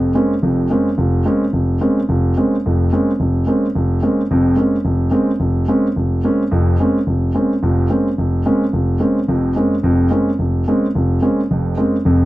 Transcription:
Already playing: F1 F2
0.15 G#3 A#3 C4 C#4
0.43 F1 F2
0.70 G#3 A#3 C4 C#4
0.98 F1
1.25 G#3 A#3 C4 C#4
1.53 F1
1.81 G#3 A#3 C4 C#4
2.09 F1
2.37 G#3 A#3 C4 C#4
2.66 F1 F2
2.93 G#3 A#3 C4 C#4
3.20 F1
3.47 G#3 A#3 C4 C#4
3.75 F1
4.02 G#3 A#3 C4 C#4
4.31 F1 F2
4.56 G#3 A#3 C4 C#4
4.85 F1
5.11 G#3 A#3 C4 C#4
5.40 F1
5.68 G#3 A#3 C4 C#4
5.96 F1
6.24 G#3 A#3 C4 C#4
6.51 F1 F2
6.80 G#3 A#3 C4 C#4
7.07 F1
7.35 G#3 A#3 C4 C#4
7.63 F1 F2
7.90 G#3 A#3 C4 C#4
8.18 F1
8.46 G#3 A#3 C4 C#4
8.73 F1
9.00 G#3 A#3 C4 C#4
9.28 F1 F2
9.56 G#3 A#3 C4 C#4
9.83 F1 F2
10.11 G#3 A#3 C4 C#4
10.39 F1
10.68 G#3 A#3 C4 C#4
10.95 F1
11.22 G#3 A#3 C4 C#4
11.51 F1 F2
11.77 G#3 A#3 C4 C#4
12.05 F1 F2

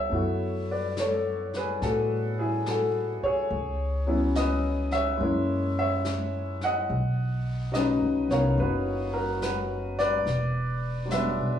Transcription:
Already playing: B3 D4 F4 G#4 B4 C#5 E5
0.09 F#2 A3 B3 E4, brush sweep
0.14 F#4
0.71 B4 D5
0.97 C#5, snare, hi-hat pedal
1.01 A4
1.53 B4, snare
1.58 G#4
1.82 A2 F#4 A4, brush sweep, snare
2.39 E4 G#4
2.66 F#4 A4, snare, hi-hat pedal
3.23 G#4 C#5, muted upright bass stroke
3.50 C#2, brush sweep
4.07 F#3 B3 C#4 E4
4.35 B4 D#5, snare, hi-hat pedal
4.91 C#5 E5, snare
5.18 F#2 G#3 A#3 C#4, brush sweep
5.23 E4
5.79 C#5 E5
6.05 snare, hi-hat pedal
6.61 D#5 F#5, snare
6.89 B1, brush sweep
7.72 C#3 F#3 B4 D#5, snare, hi-hat pedal
7.77 D#4
8.02 C#2
8.29 C2 B3 D#4 A#4 C#5 F5, snare
8.58 F#1 F#4 B4, brush sweep
9.14 F#4 A#4
9.42 F#4 B4, snare, hi-hat pedal
9.99 B4 D5, snare
10.25 E1, brush sweep, snare
11.06 F#3 G#3
11.11 B3 B4 E5, snare, hi-hat pedal
11.16 D4
11.39 B1

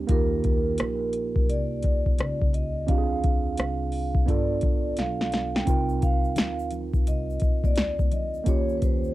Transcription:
0.07 D#2 A#3 D#4 F4 A#4, kick, closed hi-hat
0.12 G4
0.44 kick, closed hi-hat
0.78 A#1, cross-stick, closed hi-hat
1.13 closed hi-hat
1.36 kick
1.49 C2 D5, closed hi-hat
1.83 D2, kick, closed hi-hat
2.06 kick
2.18 C#2, cross-stick, closed hi-hat
2.42 kick
2.53 D#5, closed hi-hat
2.87 D2 C4 D4 F4 F5, kick, closed hi-hat
2.91 G4
2.98 G#4
3.24 kick, closed hi-hat
3.57 C2, cross-stick, closed hi-hat
3.92 open hi-hat
4.15 kick
4.26 G1 B3 D4 F4 D5, kick, closed hi-hat
4.30 A4
4.61 A1, kick, closed hi-hat
4.97 B1 F5, snare, closed hi-hat
5.21 snare
5.32 snare, closed hi-hat
5.55 G5, snare
5.65 C2 C4 D#4 F4 G5, kick, closed hi-hat, shaker
5.70 A#4
5.89 shaker
6.02 F5, kick, closed hi-hat, shaker
6.24 shaker
6.36 D2, snare, closed hi-hat, low conga, shaker
6.59 shaker
6.71 closed hi-hat, low conga, shaker
6.94 kick, shaker
7.07 C2 D#5, closed hi-hat, shaker
7.30 shaker
7.40 A#1, kick, closed hi-hat, shaker
7.64 D5, kick, high conga, shaker
7.76 D2, snare, closed hi-hat, shaker
7.99 kick, high conga, shaker
8.12 D#5, closed hi-hat, low conga, shaker
8.34 shaker
8.44 D#2 A#3 C#4 F4 C#5, kick, closed hi-hat, shaker
8.49 G4
8.69 shaker
8.77 B4
8.82 C5, kick, closed hi-hat, shaker
9.04 shaker

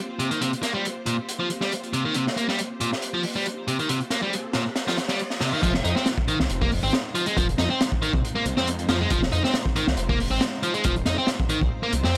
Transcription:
Already playing: A#3 C4 F4 G4 C5
0.19 C3, closed hi-hat
0.31 D#3, closed hi-hat
0.41 C3, closed hi-hat
0.53 closed hi-hat
0.63 A#3, snare, closed hi-hat
0.74 G3
0.85 closed hi-hat
1.06 A#2, closed hi-hat
1.29 closed hi-hat
1.40 F3
1.50 closed hi-hat
1.61 G3, snare
1.72 closed hi-hat
1.83 closed hi-hat
1.93 C3, closed hi-hat
2.05 D#3
2.14 C3, closed hi-hat, riser
2.27 snare
2.37 A#3, closed hi-hat
2.49 G3, snare
2.58 closed hi-hat
2.80 A#2, closed hi-hat
2.93 snare
3.02 closed hi-hat
3.14 F3
3.23 open hi-hat
3.36 G3
3.46 closed hi-hat
3.68 C3, closed hi-hat
3.79 D#3, closed hi-hat
3.89 C3, closed hi-hat
4.00 closed hi-hat
4.10 A#3, snare, closed hi-hat
4.22 G3
4.33 closed hi-hat
4.53 A#2, snare, closed hi-hat
4.76 snare, closed hi-hat
4.88 F3, snare, closed hi-hat
4.97 snare, closed hi-hat
5.08 G3, snare, closed hi-hat
5.19 closed hi-hat
5.30 snare
5.41 C3, snare, closed hi-hat
5.53 D#3
5.63 F1 F3 G#3 C4 D#4 F4 C5, kick, closed hi-hat, crash
5.74 snare
5.84 F2 D#4, closed hi-hat
5.96 C4, snare
6.06 snare, closed hi-hat
6.18 kick
6.28 D#3, closed hi-hat
6.40 C2, snare
6.50 F1, closed hi-hat
6.61 A#3, kick
6.71 open hi-hat
6.83 G#1 C4
6.93 snare, closed hi-hat
7.15 F3, closed hi-hat
7.26 G#3, closed hi-hat
7.37 F1 F3, kick, closed hi-hat
7.49 closed hi-hat
7.58 F2 D#4, snare, closed hi-hat
7.70 C4
7.81 snare, closed hi-hat
7.92 kick
8.02 D#3, closed hi-hat
8.13 C2, kick
8.25 closed hi-hat
8.35 A#3
8.45 C2, closed hi-hat
8.57 F2 C4, snare
8.67 closed hi-hat
8.79 closed hi-hat
8.89 F2 F3, snare, closed hi-hat
9.01 G#3
9.10 F1 F3, kick, closed hi-hat
9.23 snare
9.32 F2 D#4, closed hi-hat
9.44 C4, snare
9.54 snare, closed hi-hat
9.66 kick
9.76 D#3, closed hi-hat
9.87 C2, snare
9.97 F1, closed hi-hat
10.09 A#3, kick
10.20 open hi-hat
10.31 G#1 C4
10.41 snare, closed hi-hat
10.63 F3, closed hi-hat
10.74 G#3, closed hi-hat
10.84 F1 F3, kick, closed hi-hat
10.96 closed hi-hat
11.05 F2 D#4, snare, closed hi-hat
11.18 C4
11.27 snare, closed hi-hat
11.40 kick
11.49 D#3, closed hi-hat
11.61 C2, kick
11.83 A#3
11.92 C2, closed hi-hat
12.04 F2 C4, snare

